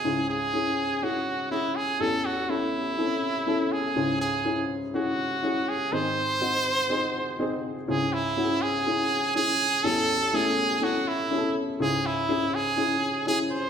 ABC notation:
X:1
M:4/4
L:1/8
Q:1/4=123
K:C#m
V:1 name="Trumpet"
G G3 F2 E G | A F E4- E G- | G G2 z F3 G | ^B6- B z |
G E2 G3 G2 | A2 G2 F E2 z | G E2 G3 G ^B |]
V:2 name="Upright piano"
[CEG] z [CEG] z [CEG] z [CEG] z | [CEA] z [CEA] z [^B,CEA] z [CEA] z | [CEG] z [CEG] z [CEG] z [CEG] z | [^B,DG] z [B,DF] z [B,DG] z [B,DG] z |
[CEG] z [CEFG] z [CEG] z [CEG] z | [CEA] z [A,CE] z [CEA] z [CEGA] z | [CEG] z [CEG] z [CEG] z [CEG] z |]
V:3 name="Upright piano" clef=bass
[C,,G,,]8 | [A,,,E,,]8 | [C,,G,,]8 | [G,,D,]8 |
[C,,G,,]8 | [A,,,E,,]8 | [C,,G,,]8 |]